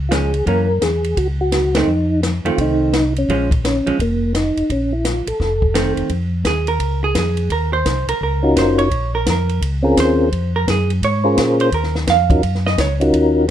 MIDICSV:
0, 0, Header, 1, 5, 480
1, 0, Start_track
1, 0, Key_signature, -5, "minor"
1, 0, Tempo, 351700
1, 639, Time_signature, 4, 2, 24, 8
1, 18430, End_track
2, 0, Start_track
2, 0, Title_t, "Tonewheel organ"
2, 0, Program_c, 0, 16
2, 121, Note_on_c, 0, 65, 68
2, 174, Note_off_c, 0, 65, 0
2, 185, Note_on_c, 0, 68, 86
2, 619, Note_off_c, 0, 68, 0
2, 658, Note_on_c, 0, 70, 99
2, 1122, Note_on_c, 0, 68, 81
2, 1143, Note_off_c, 0, 70, 0
2, 1604, Note_on_c, 0, 66, 95
2, 1616, Note_off_c, 0, 68, 0
2, 1740, Note_off_c, 0, 66, 0
2, 1923, Note_on_c, 0, 66, 105
2, 2409, Note_off_c, 0, 66, 0
2, 2416, Note_on_c, 0, 63, 89
2, 3012, Note_off_c, 0, 63, 0
2, 3355, Note_on_c, 0, 65, 88
2, 3531, Note_off_c, 0, 65, 0
2, 3564, Note_on_c, 0, 63, 92
2, 4275, Note_off_c, 0, 63, 0
2, 4347, Note_on_c, 0, 61, 89
2, 4775, Note_off_c, 0, 61, 0
2, 4994, Note_on_c, 0, 61, 81
2, 5427, Note_off_c, 0, 61, 0
2, 5479, Note_on_c, 0, 58, 90
2, 5909, Note_off_c, 0, 58, 0
2, 5943, Note_on_c, 0, 63, 77
2, 6428, Note_off_c, 0, 63, 0
2, 6439, Note_on_c, 0, 61, 90
2, 6724, Note_on_c, 0, 64, 73
2, 6735, Note_off_c, 0, 61, 0
2, 6896, Note_off_c, 0, 64, 0
2, 6898, Note_on_c, 0, 65, 77
2, 7203, Note_on_c, 0, 69, 85
2, 7205, Note_off_c, 0, 65, 0
2, 8102, Note_off_c, 0, 69, 0
2, 11500, Note_on_c, 0, 61, 60
2, 11509, Note_on_c, 0, 65, 56
2, 11512, Note_on_c, 0, 63, 55
2, 11522, Note_on_c, 0, 66, 56
2, 11525, Note_on_c, 0, 70, 68
2, 12124, Note_off_c, 0, 61, 0
2, 12129, Note_off_c, 0, 65, 0
2, 12130, Note_off_c, 0, 63, 0
2, 12135, Note_off_c, 0, 66, 0
2, 12136, Note_off_c, 0, 70, 0
2, 13409, Note_on_c, 0, 60, 78
2, 13415, Note_on_c, 0, 61, 72
2, 13425, Note_on_c, 0, 65, 72
2, 13434, Note_on_c, 0, 68, 64
2, 13437, Note_on_c, 0, 70, 76
2, 14038, Note_off_c, 0, 60, 0
2, 14041, Note_off_c, 0, 61, 0
2, 14046, Note_off_c, 0, 65, 0
2, 14050, Note_off_c, 0, 68, 0
2, 14052, Note_off_c, 0, 70, 0
2, 15337, Note_on_c, 0, 72, 64
2, 15346, Note_on_c, 0, 65, 53
2, 15347, Note_on_c, 0, 61, 58
2, 15357, Note_on_c, 0, 68, 56
2, 15363, Note_on_c, 0, 70, 75
2, 15961, Note_off_c, 0, 72, 0
2, 15966, Note_off_c, 0, 65, 0
2, 15967, Note_off_c, 0, 61, 0
2, 15972, Note_off_c, 0, 68, 0
2, 15974, Note_off_c, 0, 70, 0
2, 16789, Note_on_c, 0, 61, 66
2, 16792, Note_on_c, 0, 65, 59
2, 16794, Note_on_c, 0, 63, 53
2, 16803, Note_on_c, 0, 66, 59
2, 16805, Note_on_c, 0, 70, 71
2, 16945, Note_off_c, 0, 61, 0
2, 16946, Note_off_c, 0, 65, 0
2, 16947, Note_off_c, 0, 63, 0
2, 16952, Note_off_c, 0, 66, 0
2, 16953, Note_off_c, 0, 70, 0
2, 17741, Note_on_c, 0, 61, 74
2, 17753, Note_on_c, 0, 63, 71
2, 17755, Note_on_c, 0, 65, 67
2, 17766, Note_on_c, 0, 66, 66
2, 17768, Note_on_c, 0, 70, 80
2, 18363, Note_off_c, 0, 61, 0
2, 18369, Note_off_c, 0, 63, 0
2, 18370, Note_off_c, 0, 65, 0
2, 18375, Note_off_c, 0, 66, 0
2, 18376, Note_off_c, 0, 70, 0
2, 18430, End_track
3, 0, Start_track
3, 0, Title_t, "Hollow-body jazz guitar"
3, 0, Program_c, 1, 26
3, 151, Note_on_c, 1, 53, 47
3, 154, Note_on_c, 1, 56, 58
3, 162, Note_on_c, 1, 61, 59
3, 429, Note_off_c, 1, 53, 0
3, 431, Note_off_c, 1, 56, 0
3, 435, Note_off_c, 1, 61, 0
3, 644, Note_on_c, 1, 52, 50
3, 646, Note_on_c, 1, 58, 52
3, 656, Note_on_c, 1, 61, 55
3, 916, Note_off_c, 1, 52, 0
3, 917, Note_off_c, 1, 58, 0
3, 922, Note_off_c, 1, 61, 0
3, 2400, Note_on_c, 1, 51, 54
3, 2410, Note_on_c, 1, 57, 66
3, 2413, Note_on_c, 1, 60, 68
3, 2551, Note_off_c, 1, 51, 0
3, 2555, Note_off_c, 1, 57, 0
3, 2557, Note_off_c, 1, 60, 0
3, 3348, Note_on_c, 1, 51, 60
3, 3355, Note_on_c, 1, 57, 68
3, 3365, Note_on_c, 1, 60, 71
3, 3968, Note_off_c, 1, 51, 0
3, 3971, Note_off_c, 1, 57, 0
3, 3976, Note_off_c, 1, 60, 0
3, 4504, Note_on_c, 1, 53, 65
3, 4508, Note_on_c, 1, 56, 71
3, 4515, Note_on_c, 1, 61, 76
3, 4768, Note_off_c, 1, 53, 0
3, 4770, Note_off_c, 1, 56, 0
3, 4773, Note_off_c, 1, 61, 0
3, 5276, Note_on_c, 1, 53, 51
3, 5287, Note_on_c, 1, 56, 49
3, 5287, Note_on_c, 1, 61, 57
3, 5430, Note_off_c, 1, 53, 0
3, 5435, Note_off_c, 1, 56, 0
3, 5435, Note_off_c, 1, 61, 0
3, 7838, Note_on_c, 1, 51, 53
3, 7854, Note_on_c, 1, 57, 55
3, 7858, Note_on_c, 1, 60, 60
3, 8321, Note_off_c, 1, 51, 0
3, 8329, Note_off_c, 1, 57, 0
3, 8331, Note_off_c, 1, 60, 0
3, 8829, Note_on_c, 1, 68, 77
3, 9112, Note_off_c, 1, 68, 0
3, 9119, Note_on_c, 1, 70, 88
3, 9561, Note_off_c, 1, 70, 0
3, 9609, Note_on_c, 1, 68, 85
3, 9769, Note_off_c, 1, 68, 0
3, 9809, Note_on_c, 1, 68, 76
3, 10234, Note_off_c, 1, 68, 0
3, 10262, Note_on_c, 1, 70, 74
3, 10546, Note_off_c, 1, 70, 0
3, 10552, Note_on_c, 1, 72, 97
3, 10996, Note_off_c, 1, 72, 0
3, 11041, Note_on_c, 1, 70, 78
3, 11205, Note_off_c, 1, 70, 0
3, 11237, Note_on_c, 1, 70, 72
3, 11667, Note_off_c, 1, 70, 0
3, 11719, Note_on_c, 1, 72, 73
3, 11983, Note_off_c, 1, 72, 0
3, 11989, Note_on_c, 1, 73, 96
3, 12435, Note_off_c, 1, 73, 0
3, 12486, Note_on_c, 1, 70, 77
3, 12647, Note_off_c, 1, 70, 0
3, 12697, Note_on_c, 1, 70, 81
3, 13118, Note_off_c, 1, 70, 0
3, 13648, Note_on_c, 1, 72, 80
3, 14356, Note_off_c, 1, 72, 0
3, 14412, Note_on_c, 1, 70, 87
3, 14569, Note_off_c, 1, 70, 0
3, 14605, Note_on_c, 1, 68, 85
3, 14879, Note_off_c, 1, 68, 0
3, 15074, Note_on_c, 1, 73, 90
3, 15789, Note_off_c, 1, 73, 0
3, 15846, Note_on_c, 1, 72, 84
3, 16006, Note_off_c, 1, 72, 0
3, 16028, Note_on_c, 1, 70, 77
3, 16310, Note_off_c, 1, 70, 0
3, 16513, Note_on_c, 1, 77, 92
3, 17227, Note_off_c, 1, 77, 0
3, 17285, Note_on_c, 1, 75, 92
3, 17445, Note_off_c, 1, 75, 0
3, 17472, Note_on_c, 1, 73, 80
3, 17645, Note_off_c, 1, 73, 0
3, 18430, End_track
4, 0, Start_track
4, 0, Title_t, "Tonewheel organ"
4, 0, Program_c, 2, 16
4, 0, Note_on_c, 2, 37, 86
4, 586, Note_off_c, 2, 37, 0
4, 630, Note_on_c, 2, 42, 86
4, 1081, Note_off_c, 2, 42, 0
4, 1114, Note_on_c, 2, 40, 69
4, 1563, Note_off_c, 2, 40, 0
4, 1595, Note_on_c, 2, 37, 80
4, 2510, Note_off_c, 2, 37, 0
4, 2550, Note_on_c, 2, 41, 86
4, 3287, Note_off_c, 2, 41, 0
4, 3332, Note_on_c, 2, 41, 40
4, 3423, Note_off_c, 2, 41, 0
4, 3519, Note_on_c, 2, 36, 84
4, 4433, Note_off_c, 2, 36, 0
4, 4488, Note_on_c, 2, 34, 87
4, 5216, Note_off_c, 2, 34, 0
4, 5270, Note_on_c, 2, 34, 41
4, 5357, Note_off_c, 2, 34, 0
4, 5449, Note_on_c, 2, 29, 85
4, 6177, Note_off_c, 2, 29, 0
4, 6234, Note_on_c, 2, 29, 34
4, 6320, Note_off_c, 2, 29, 0
4, 6406, Note_on_c, 2, 34, 80
4, 7136, Note_off_c, 2, 34, 0
4, 7189, Note_on_c, 2, 34, 38
4, 7277, Note_off_c, 2, 34, 0
4, 7370, Note_on_c, 2, 29, 87
4, 8098, Note_off_c, 2, 29, 0
4, 8137, Note_on_c, 2, 29, 37
4, 8228, Note_off_c, 2, 29, 0
4, 8320, Note_on_c, 2, 41, 81
4, 8787, Note_off_c, 2, 41, 0
4, 8800, Note_on_c, 2, 39, 84
4, 9267, Note_off_c, 2, 39, 0
4, 9277, Note_on_c, 2, 37, 84
4, 9746, Note_off_c, 2, 37, 0
4, 9758, Note_on_c, 2, 41, 83
4, 10226, Note_off_c, 2, 41, 0
4, 10239, Note_on_c, 2, 39, 89
4, 10707, Note_off_c, 2, 39, 0
4, 10721, Note_on_c, 2, 36, 85
4, 10998, Note_off_c, 2, 36, 0
4, 11015, Note_on_c, 2, 36, 41
4, 11106, Note_off_c, 2, 36, 0
4, 11204, Note_on_c, 2, 37, 91
4, 11669, Note_off_c, 2, 37, 0
4, 11682, Note_on_c, 2, 30, 82
4, 12148, Note_off_c, 2, 30, 0
4, 12164, Note_on_c, 2, 34, 84
4, 12629, Note_off_c, 2, 34, 0
4, 12647, Note_on_c, 2, 41, 90
4, 13110, Note_off_c, 2, 41, 0
4, 13122, Note_on_c, 2, 37, 86
4, 13587, Note_off_c, 2, 37, 0
4, 13604, Note_on_c, 2, 39, 83
4, 14069, Note_off_c, 2, 39, 0
4, 14086, Note_on_c, 2, 41, 81
4, 14549, Note_off_c, 2, 41, 0
4, 14566, Note_on_c, 2, 42, 89
4, 15029, Note_off_c, 2, 42, 0
4, 15044, Note_on_c, 2, 44, 90
4, 15508, Note_off_c, 2, 44, 0
4, 15520, Note_on_c, 2, 46, 85
4, 15986, Note_off_c, 2, 46, 0
4, 15998, Note_on_c, 2, 39, 88
4, 16465, Note_off_c, 2, 39, 0
4, 16477, Note_on_c, 2, 41, 86
4, 16944, Note_off_c, 2, 41, 0
4, 16955, Note_on_c, 2, 42, 83
4, 17423, Note_off_c, 2, 42, 0
4, 17441, Note_on_c, 2, 37, 91
4, 17906, Note_off_c, 2, 37, 0
4, 17919, Note_on_c, 2, 39, 84
4, 18385, Note_off_c, 2, 39, 0
4, 18430, End_track
5, 0, Start_track
5, 0, Title_t, "Drums"
5, 156, Note_on_c, 9, 38, 70
5, 156, Note_on_c, 9, 44, 66
5, 156, Note_on_c, 9, 51, 58
5, 293, Note_off_c, 9, 38, 0
5, 293, Note_off_c, 9, 44, 0
5, 293, Note_off_c, 9, 51, 0
5, 459, Note_on_c, 9, 51, 44
5, 596, Note_off_c, 9, 51, 0
5, 635, Note_on_c, 9, 36, 28
5, 637, Note_on_c, 9, 51, 41
5, 772, Note_off_c, 9, 36, 0
5, 774, Note_off_c, 9, 51, 0
5, 1115, Note_on_c, 9, 38, 59
5, 1115, Note_on_c, 9, 44, 51
5, 1115, Note_on_c, 9, 51, 61
5, 1252, Note_off_c, 9, 38, 0
5, 1252, Note_off_c, 9, 44, 0
5, 1252, Note_off_c, 9, 51, 0
5, 1424, Note_on_c, 9, 51, 42
5, 1561, Note_off_c, 9, 51, 0
5, 1597, Note_on_c, 9, 36, 31
5, 1598, Note_on_c, 9, 51, 57
5, 1733, Note_off_c, 9, 36, 0
5, 1734, Note_off_c, 9, 51, 0
5, 2076, Note_on_c, 9, 38, 64
5, 2076, Note_on_c, 9, 44, 55
5, 2076, Note_on_c, 9, 51, 70
5, 2212, Note_off_c, 9, 38, 0
5, 2212, Note_off_c, 9, 44, 0
5, 2212, Note_off_c, 9, 51, 0
5, 2384, Note_on_c, 9, 38, 74
5, 2384, Note_on_c, 9, 51, 63
5, 2521, Note_off_c, 9, 38, 0
5, 2521, Note_off_c, 9, 51, 0
5, 3045, Note_on_c, 9, 38, 62
5, 3045, Note_on_c, 9, 44, 50
5, 3045, Note_on_c, 9, 51, 58
5, 3182, Note_off_c, 9, 38, 0
5, 3182, Note_off_c, 9, 44, 0
5, 3182, Note_off_c, 9, 51, 0
5, 3351, Note_on_c, 9, 51, 40
5, 3487, Note_off_c, 9, 51, 0
5, 3522, Note_on_c, 9, 36, 32
5, 3524, Note_on_c, 9, 51, 61
5, 3659, Note_off_c, 9, 36, 0
5, 3660, Note_off_c, 9, 51, 0
5, 4004, Note_on_c, 9, 38, 71
5, 4004, Note_on_c, 9, 44, 57
5, 4004, Note_on_c, 9, 51, 67
5, 4140, Note_off_c, 9, 38, 0
5, 4140, Note_off_c, 9, 44, 0
5, 4140, Note_off_c, 9, 51, 0
5, 4318, Note_on_c, 9, 51, 44
5, 4454, Note_off_c, 9, 51, 0
5, 4488, Note_on_c, 9, 36, 29
5, 4496, Note_on_c, 9, 51, 49
5, 4624, Note_off_c, 9, 36, 0
5, 4633, Note_off_c, 9, 51, 0
5, 4794, Note_on_c, 9, 36, 53
5, 4803, Note_on_c, 9, 51, 47
5, 4930, Note_off_c, 9, 36, 0
5, 4940, Note_off_c, 9, 51, 0
5, 4977, Note_on_c, 9, 38, 62
5, 4977, Note_on_c, 9, 44, 58
5, 4977, Note_on_c, 9, 51, 68
5, 5114, Note_off_c, 9, 38, 0
5, 5114, Note_off_c, 9, 44, 0
5, 5114, Note_off_c, 9, 51, 0
5, 5279, Note_on_c, 9, 51, 46
5, 5416, Note_off_c, 9, 51, 0
5, 5452, Note_on_c, 9, 36, 33
5, 5459, Note_on_c, 9, 51, 58
5, 5588, Note_off_c, 9, 36, 0
5, 5595, Note_off_c, 9, 51, 0
5, 5932, Note_on_c, 9, 38, 62
5, 5932, Note_on_c, 9, 44, 59
5, 5932, Note_on_c, 9, 51, 58
5, 6068, Note_off_c, 9, 38, 0
5, 6068, Note_off_c, 9, 44, 0
5, 6068, Note_off_c, 9, 51, 0
5, 6241, Note_on_c, 9, 51, 45
5, 6377, Note_off_c, 9, 51, 0
5, 6411, Note_on_c, 9, 36, 25
5, 6413, Note_on_c, 9, 51, 52
5, 6548, Note_off_c, 9, 36, 0
5, 6550, Note_off_c, 9, 51, 0
5, 6889, Note_on_c, 9, 38, 60
5, 6889, Note_on_c, 9, 44, 55
5, 6889, Note_on_c, 9, 51, 60
5, 7026, Note_off_c, 9, 38, 0
5, 7026, Note_off_c, 9, 44, 0
5, 7026, Note_off_c, 9, 51, 0
5, 7195, Note_on_c, 9, 51, 58
5, 7332, Note_off_c, 9, 51, 0
5, 7369, Note_on_c, 9, 36, 30
5, 7380, Note_on_c, 9, 38, 33
5, 7505, Note_off_c, 9, 36, 0
5, 7517, Note_off_c, 9, 38, 0
5, 7673, Note_on_c, 9, 36, 46
5, 7809, Note_off_c, 9, 36, 0
5, 7849, Note_on_c, 9, 38, 69
5, 7849, Note_on_c, 9, 44, 50
5, 7849, Note_on_c, 9, 51, 73
5, 7986, Note_off_c, 9, 38, 0
5, 7986, Note_off_c, 9, 44, 0
5, 7986, Note_off_c, 9, 51, 0
5, 8149, Note_on_c, 9, 51, 42
5, 8285, Note_off_c, 9, 51, 0
5, 8317, Note_on_c, 9, 51, 45
5, 8321, Note_on_c, 9, 36, 17
5, 8454, Note_off_c, 9, 51, 0
5, 8458, Note_off_c, 9, 36, 0
5, 8800, Note_on_c, 9, 36, 22
5, 8800, Note_on_c, 9, 38, 66
5, 8800, Note_on_c, 9, 44, 54
5, 8800, Note_on_c, 9, 51, 64
5, 8936, Note_off_c, 9, 38, 0
5, 8936, Note_off_c, 9, 44, 0
5, 8936, Note_off_c, 9, 51, 0
5, 8937, Note_off_c, 9, 36, 0
5, 9103, Note_on_c, 9, 51, 45
5, 9239, Note_off_c, 9, 51, 0
5, 9277, Note_on_c, 9, 51, 55
5, 9279, Note_on_c, 9, 36, 20
5, 9414, Note_off_c, 9, 51, 0
5, 9415, Note_off_c, 9, 36, 0
5, 9758, Note_on_c, 9, 38, 69
5, 9758, Note_on_c, 9, 44, 53
5, 9758, Note_on_c, 9, 51, 71
5, 9760, Note_on_c, 9, 36, 20
5, 9894, Note_off_c, 9, 38, 0
5, 9894, Note_off_c, 9, 44, 0
5, 9894, Note_off_c, 9, 51, 0
5, 9896, Note_off_c, 9, 36, 0
5, 10057, Note_on_c, 9, 51, 42
5, 10193, Note_off_c, 9, 51, 0
5, 10237, Note_on_c, 9, 51, 51
5, 10240, Note_on_c, 9, 36, 19
5, 10373, Note_off_c, 9, 51, 0
5, 10376, Note_off_c, 9, 36, 0
5, 10723, Note_on_c, 9, 36, 25
5, 10723, Note_on_c, 9, 38, 64
5, 10723, Note_on_c, 9, 44, 60
5, 10723, Note_on_c, 9, 51, 62
5, 10859, Note_off_c, 9, 38, 0
5, 10859, Note_off_c, 9, 44, 0
5, 10859, Note_off_c, 9, 51, 0
5, 10860, Note_off_c, 9, 36, 0
5, 11033, Note_on_c, 9, 51, 66
5, 11170, Note_off_c, 9, 51, 0
5, 11206, Note_on_c, 9, 36, 18
5, 11342, Note_off_c, 9, 36, 0
5, 11686, Note_on_c, 9, 36, 20
5, 11690, Note_on_c, 9, 38, 65
5, 11690, Note_on_c, 9, 44, 55
5, 11690, Note_on_c, 9, 51, 73
5, 11823, Note_off_c, 9, 36, 0
5, 11826, Note_off_c, 9, 38, 0
5, 11826, Note_off_c, 9, 44, 0
5, 11826, Note_off_c, 9, 51, 0
5, 11990, Note_on_c, 9, 51, 49
5, 12127, Note_off_c, 9, 51, 0
5, 12164, Note_on_c, 9, 51, 49
5, 12165, Note_on_c, 9, 36, 25
5, 12301, Note_off_c, 9, 51, 0
5, 12302, Note_off_c, 9, 36, 0
5, 12644, Note_on_c, 9, 38, 64
5, 12644, Note_on_c, 9, 44, 49
5, 12644, Note_on_c, 9, 51, 69
5, 12647, Note_on_c, 9, 36, 23
5, 12781, Note_off_c, 9, 38, 0
5, 12781, Note_off_c, 9, 44, 0
5, 12781, Note_off_c, 9, 51, 0
5, 12783, Note_off_c, 9, 36, 0
5, 12956, Note_on_c, 9, 51, 44
5, 13092, Note_off_c, 9, 51, 0
5, 13128, Note_on_c, 9, 36, 21
5, 13134, Note_on_c, 9, 51, 64
5, 13265, Note_off_c, 9, 36, 0
5, 13270, Note_off_c, 9, 51, 0
5, 13609, Note_on_c, 9, 36, 25
5, 13610, Note_on_c, 9, 38, 65
5, 13610, Note_on_c, 9, 44, 55
5, 13610, Note_on_c, 9, 51, 76
5, 13745, Note_off_c, 9, 36, 0
5, 13747, Note_off_c, 9, 38, 0
5, 13747, Note_off_c, 9, 44, 0
5, 13747, Note_off_c, 9, 51, 0
5, 14089, Note_on_c, 9, 36, 19
5, 14090, Note_on_c, 9, 51, 54
5, 14225, Note_off_c, 9, 36, 0
5, 14227, Note_off_c, 9, 51, 0
5, 14569, Note_on_c, 9, 36, 17
5, 14574, Note_on_c, 9, 38, 67
5, 14574, Note_on_c, 9, 44, 46
5, 14574, Note_on_c, 9, 51, 64
5, 14705, Note_off_c, 9, 36, 0
5, 14710, Note_off_c, 9, 38, 0
5, 14710, Note_off_c, 9, 44, 0
5, 14710, Note_off_c, 9, 51, 0
5, 14878, Note_on_c, 9, 51, 46
5, 15014, Note_off_c, 9, 51, 0
5, 15045, Note_on_c, 9, 36, 19
5, 15052, Note_on_c, 9, 51, 59
5, 15182, Note_off_c, 9, 36, 0
5, 15189, Note_off_c, 9, 51, 0
5, 15524, Note_on_c, 9, 36, 21
5, 15525, Note_on_c, 9, 38, 75
5, 15525, Note_on_c, 9, 44, 59
5, 15525, Note_on_c, 9, 51, 75
5, 15661, Note_off_c, 9, 36, 0
5, 15661, Note_off_c, 9, 38, 0
5, 15661, Note_off_c, 9, 44, 0
5, 15661, Note_off_c, 9, 51, 0
5, 15829, Note_on_c, 9, 51, 47
5, 15965, Note_off_c, 9, 51, 0
5, 15998, Note_on_c, 9, 51, 50
5, 15999, Note_on_c, 9, 36, 21
5, 16134, Note_off_c, 9, 51, 0
5, 16135, Note_off_c, 9, 36, 0
5, 16153, Note_on_c, 9, 38, 29
5, 16289, Note_off_c, 9, 38, 0
5, 16315, Note_on_c, 9, 38, 47
5, 16451, Note_off_c, 9, 38, 0
5, 16478, Note_on_c, 9, 36, 21
5, 16478, Note_on_c, 9, 38, 65
5, 16478, Note_on_c, 9, 44, 48
5, 16478, Note_on_c, 9, 51, 65
5, 16615, Note_off_c, 9, 36, 0
5, 16615, Note_off_c, 9, 38, 0
5, 16615, Note_off_c, 9, 44, 0
5, 16615, Note_off_c, 9, 51, 0
5, 16784, Note_on_c, 9, 36, 59
5, 16791, Note_on_c, 9, 51, 45
5, 16921, Note_off_c, 9, 36, 0
5, 16927, Note_off_c, 9, 51, 0
5, 16961, Note_on_c, 9, 36, 21
5, 16964, Note_on_c, 9, 51, 61
5, 17097, Note_off_c, 9, 36, 0
5, 17100, Note_off_c, 9, 51, 0
5, 17129, Note_on_c, 9, 38, 27
5, 17265, Note_off_c, 9, 38, 0
5, 17289, Note_on_c, 9, 38, 45
5, 17425, Note_off_c, 9, 38, 0
5, 17441, Note_on_c, 9, 36, 22
5, 17445, Note_on_c, 9, 38, 70
5, 17445, Note_on_c, 9, 44, 53
5, 17445, Note_on_c, 9, 51, 69
5, 17577, Note_off_c, 9, 36, 0
5, 17581, Note_off_c, 9, 38, 0
5, 17581, Note_off_c, 9, 44, 0
5, 17581, Note_off_c, 9, 51, 0
5, 17757, Note_on_c, 9, 51, 45
5, 17893, Note_off_c, 9, 51, 0
5, 17922, Note_on_c, 9, 36, 18
5, 17927, Note_on_c, 9, 51, 51
5, 18058, Note_off_c, 9, 36, 0
5, 18064, Note_off_c, 9, 51, 0
5, 18430, End_track
0, 0, End_of_file